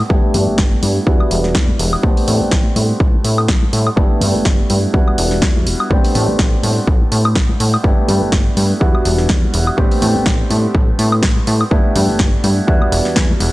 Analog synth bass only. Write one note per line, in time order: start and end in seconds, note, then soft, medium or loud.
0.10 0.19 G1 loud
0.34 0.47 G2 medium
0.48 0.56 G1 soft
0.58 0.75 G1 medium
0.83 0.99 G2 medium
1.07 1.20 E2 medium
1.20 1.29 E1 soft
1.31 1.57 E1 loud
1.55 1.72 E2 medium
1.79 1.96 E1 loud
2.03 2.12 A1 medium
2.28 2.41 A2 medium
2.41 2.50 A1 soft
2.52 2.69 A1 medium
2.76 2.93 A2 medium
3.00 3.17 A1 medium
3.24 3.50 A2 medium
3.49 3.66 A1 medium
3.73 3.90 A2 loud
3.97 4.06 G1 loud
4.21 4.35 G2 medium
4.35 4.44 G1 soft
4.45 4.62 G1 medium
4.70 4.87 G2 medium
4.94 5.03 E2 medium
5.08 5.16 E1 soft
5.18 5.44 E1 medium
5.42 5.68 E2 medium
5.67 5.75 E1 loud
5.91 6.00 A1 loud
6.15 6.28 A2 medium
6.29 6.37 A1 soft
6.39 6.56 A1 medium
6.63 6.80 A2 medium
6.87 7.04 A1 loud
7.12 7.37 A2 loud
7.36 7.53 A1 medium
7.60 7.77 A2 medium
7.84 7.93 G1 loud
8.08 8.21 G2 medium
8.22 8.31 G1 soft
8.33 8.49 G1 medium
8.57 8.74 G2 medium
8.81 8.94 E2 medium
8.95 9.03 E1 soft
9.06 9.31 E1 loud
9.29 9.46 E2 medium
9.54 9.71 E1 loud
9.78 9.87 A1 loud
10.02 10.15 A2 loud
10.16 10.24 A1 soft
10.26 10.43 A1 medium
10.51 10.67 A2 medium
10.75 10.91 A1 medium
10.99 11.24 A2 loud
11.23 11.40 A1 medium
11.47 11.64 A2 medium
11.71 11.80 G1 loud
11.96 12.09 G2 medium
12.09 12.18 G1 soft
12.20 12.37 G1 medium
12.44 12.61 G2 medium
12.68 12.81 E2 medium
12.82 12.90 E1 soft
12.92 13.01 E1 loud
13.06 13.14 E2 soft
13.16 13.33 E2 medium
13.40 13.49 E1 medium